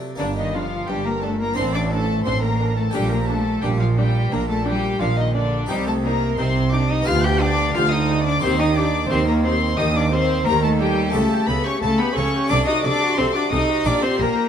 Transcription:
Already playing: C3
0.16 G1 G2 D3 A#3 D4 D5
0.36 D#3 D#4 D#5
0.54 F3 D4 F4 F5
0.88 G1 G2 G3 D4 G4 G5
1.05 A#3 A#4 A#5
1.22 A3 D4 A4 A5
1.40 A#3 A#4 A#5
1.54 A1 A2 C4 D4 C5 C6
1.74 D4 D5 D6
1.91 A3 D4 A4 A5
2.25 A1 A2 C4 D4 C5 C6
2.42 A#3 A#4 A#5
2.60 D4
2.77 A3 A4 A5
2.91 A#1 A#2 D4 G4 G5
2.95 G3
3.12 A#3 A#4 A#5
3.28 A3 D4 A4 A5
3.62 A#1 A#2 G3 D4 G4 G5
3.80 F3 F4 F5
3.97 G3 D4 G4 G5
4.31 A#1 A#2 A#3 D4 A#4 A#5
4.49 A3 A4 A5
4.66 G3 D4 G4 G5
5.00 A#1 A#2 F3 D4 F4 F5
5.18 D#3 D#4 D#5
5.35 D3 D4 D5
5.66 C2 C3 G3 D#4 G4 G5
5.70 G4
5.87 A3 A4 A5
6.04 A#3 D#4 A#4 A#5
6.38 C2 C3 C4 D#4 C5 C6
6.72 D4 D#4 D5 D6
6.90 D#4 D#5 D#6
7.02 B3 F4 G4
7.06 D2 D3 F4 G4 F5 F6
7.24 G4 G5 G6
7.41 D4 G4 D5 D6
7.74 D2 D3 F4 G4 F5 F6
7.91 D#4 D#5 D#6
8.09 G4
8.24 D4 D5 D6
8.40 D#2 D#3 C4 D#4 G4 C5 C6
8.58 D#4 D#5 D#6
8.75 D4 G4 D5 D6
9.10 D#2 D#3 C4 G4 C5 C6
9.27 A#3 A#4 A#5
9.43 C4 G4 C5 C6
9.77 D#2 D#3 D#4 G4 D#5 D#6
9.95 D4 D5 D6
10.11 C4 G4 C5 C6
10.46 D#2 D#3 A#3 G4 A#4 A#5
10.63 A3 A4 A5
10.79 G3 G4 G5
11.10 C#3 A3 E4 G4 A4
11.14 C#2 C#3 A5
11.31 G4
11.48 C#2 C#3 B3 A4 B4 B5
11.65 C#4 G4 C#5 C#6
11.81 C#2 C#3 A3 A4 A5
11.99 B3 G4 B4 B5
12.15 C#2 C#3 C#4 A4 C#5 C#6
12.33 G4
12.46 C2 A3 D4 F#4 A4 D5 D6
12.50 C3
12.67 D#4 F#4 D#5 D#6
12.84 C2 C3 D4 A4 D5 D6
13.01 F#4
13.18 C2 C3 C4 A4 C5 C6
13.35 D4 F#4 D5 D6
13.51 C2 C3 D#4 A4 D#5 D#6
13.69 F#4
13.83 A#1 A#2 D4 G4 A#4 D5 D6
14.03 C4 G4 C5 C6
14.19 A#1 A#2 A#3 A#4 A#5
14.37 G4

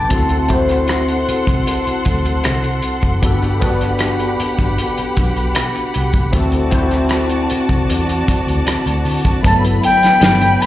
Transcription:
Already playing: A5
0.09 D2 C4 E4 F#4 A4 F#5 C6, kick, closed hi-hat
0.29 closed hi-hat
0.48 C4 E4 F#4 C5, kick, closed hi-hat
0.69 cross-stick, closed hi-hat
0.88 cross-stick, closed hi-hat
1.08 closed hi-hat
1.29 muted fingered electric bass stroke, closed hi-hat
1.47 C2, kick, cross-stick, closed hi-hat
1.67 closed hi-hat
1.87 muted fingered electric bass stroke, closed hi-hat
2.05 D2, kick, closed hi-hat
2.25 closed hi-hat
2.44 C2, cross-stick, closed hi-hat
2.64 closed hi-hat
2.82 closed hi-hat
3.01 F#1, kick, closed hi-hat
3.22 G1 B3 D4 F#4 G4 A4 F#5 B5, kick, closed hi-hat
3.42 closed hi-hat
3.60 B3 D4 F#4 B4, kick, closed hi-hat
3.81 cross-stick, closed hi-hat
3.99 cross-stick, closed hi-hat
4.20 closed hi-hat
4.40 muted fingered electric bass stroke, closed hi-hat
4.59 G1, kick, cross-stick, closed hi-hat
4.78 closed hi-hat
4.98 muted fingered electric bass stroke, closed hi-hat
5.17 B1, kick, closed hi-hat
5.37 closed hi-hat
5.55 cross-stick, closed hi-hat
5.75 closed hi-hat
5.94 C2, closed hi-hat
6.13 kick, closed hi-hat
6.32 D2 C4 E4 F#4 A4 D5 A5, kick, closed hi-hat
6.52 closed hi-hat
6.70 C4 E4 F#4, kick, closed hi-hat
6.74 C5
6.91 cross-stick, closed hi-hat
7.09 cross-stick, closed hi-hat
7.30 closed hi-hat
7.50 muted fingered electric bass stroke, closed hi-hat
7.69 C2, kick, closed hi-hat
7.90 E2, closed hi-hat
8.09 closed hi-hat
8.28 muted fingered electric bass stroke, kick, closed hi-hat
8.47 D2, closed hi-hat
8.67 muted fingered electric bass stroke, cross-stick, closed hi-hat
8.86 D2, closed hi-hat
9.05 D3, open hi-hat
9.25 kick, closed hi-hat
9.42 G1 D3 F#3 A3 B3 E4 A4 A5 B5, kick, closed hi-hat, muted triangle
9.49 B3
9.64 closed hi-hat, muted triangle
9.83 G5, closed hi-hat, triangle
10.03 snare, closed hi-hat, muted triangle
10.21 G1, snare, closed hi-hat, muted triangle
10.41 closed hi-hat, muted triangle
10.60 B5, closed hi-hat, triangle

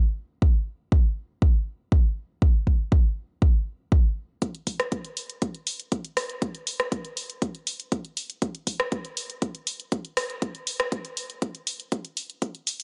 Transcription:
0.42 kick
0.92 kick
1.42 kick
1.92 kick
2.42 kick
2.67 kick
2.92 kick
3.42 kick
3.92 kick
4.42 kick, closed hi-hat
4.55 closed hi-hat
4.67 kick, open hi-hat
4.80 cross-stick, closed hi-hat
4.92 kick, closed hi-hat
5.05 closed hi-hat
5.17 open hi-hat
5.30 closed hi-hat
5.42 kick, closed hi-hat
5.55 closed hi-hat
5.67 open hi-hat
5.80 closed hi-hat
5.92 kick, closed hi-hat
6.05 closed hi-hat
6.17 cross-stick, open hi-hat
6.30 closed hi-hat
6.42 kick, closed hi-hat
6.55 closed hi-hat
6.67 open hi-hat
6.80 cross-stick, closed hi-hat
6.92 kick, closed hi-hat
7.05 closed hi-hat
7.17 open hi-hat
7.30 closed hi-hat
7.42 kick, closed hi-hat
7.55 closed hi-hat
7.67 open hi-hat
7.80 closed hi-hat
7.92 kick, closed hi-hat
8.05 closed hi-hat
8.17 open hi-hat
8.30 closed hi-hat
8.42 kick, closed hi-hat
8.55 closed hi-hat
8.67 kick, open hi-hat
8.80 cross-stick, closed hi-hat
8.92 kick, closed hi-hat
9.05 closed hi-hat
9.17 open hi-hat
9.30 closed hi-hat
9.42 kick, closed hi-hat
9.55 closed hi-hat
9.67 open hi-hat
9.80 closed hi-hat
9.92 kick, closed hi-hat
10.05 closed hi-hat
10.17 cross-stick, open hi-hat
10.30 closed hi-hat
10.42 kick, closed hi-hat
10.55 closed hi-hat
10.67 open hi-hat
10.80 cross-stick, closed hi-hat
10.92 kick, closed hi-hat
11.05 closed hi-hat
11.17 open hi-hat
11.30 closed hi-hat
11.42 kick, closed hi-hat
11.55 closed hi-hat
11.67 open hi-hat
11.80 closed hi-hat
11.92 kick, closed hi-hat
12.05 closed hi-hat
12.17 open hi-hat
12.30 closed hi-hat
12.42 kick, closed hi-hat, shaker
12.55 closed hi-hat
12.67 open hi-hat, shaker
12.80 closed hi-hat, shaker

